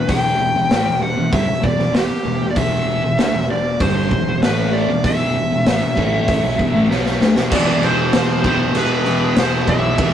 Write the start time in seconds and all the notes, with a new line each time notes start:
Already playing: B4
0.08 E1 E2 B2 E3 G5, kick, open hi-hat
0.40 E1 E2 B2
0.55 E1 E2 B2
0.71 A1 A2 E3, snare, open hi-hat
0.86 E1 E2 B2
1.02 E1 E2 B2 F#5
1.17 E1 E2 B2
1.32 G1 G2 D3 E5, kick, open hi-hat
1.48 E1 E2 B2
1.62 E1 E2 B2 D5, kick
1.78 E1 E2 B2, snare
1.93 E1 E2 B2 G4, snare, open hi-hat
2.10 muted distorted electric guitar stroke, muted picked electric bass stroke
2.25 E1 E2 B2
2.41 E1 E2 B2
2.51 D5
2.56 E1 E2 B2 E3 E5, kick, open hi-hat
3.02 E1 E2 B2
3.18 D2 D3 A3, snare, open hi-hat
3.33 E1 E2 B2
3.50 E1 E2 B2 D5
3.80 G1 G2 D3 G3 C5, kick, open hi-hat
4.11 E1 E2 B2, kick
4.27 E1 E2 B2
4.42 A1 A2 E3 A3 B4, snare, open hi-hat
4.73 D5
4.89 E1 E2 B2
5.04 E1 E2 B2 E3 E5, kick, open hi-hat
5.35 E1 E2 B2
5.51 E1 E2 B2
5.66 A1 A2 E3, snare, open hi-hat
5.81 E1 E2 B2
5.96 A1 A2 E3 A3, kick
6.28 kick, open hi-hat
6.43 B1 B2 F#3
6.59 E1 E2 B2, kick
6.74 A1 A2 E3
6.90 B1 B2 F#3 B3, snare
7.06 snare
7.21 D2 D3 A3, snare
7.36 E1 E2 B2, snare
7.52 E1 E2 B2 E3 D5, kick, crash
7.83 E1 E2 B2 E3 C5, crash
8.13 E1 E2 B2 E3, snare, crash
8.44 E2 B2 E3 C5, kick, crash
8.75 E1 E2 B2 E3 B4, crash
9.06 E2 B2 E3, crash
9.36 E1 E2 B2 E3 C5, snare, crash
9.68 B1 E2 B2 E3 E5, kick, crash
9.98 E1 E2 B2 E3, kick, crash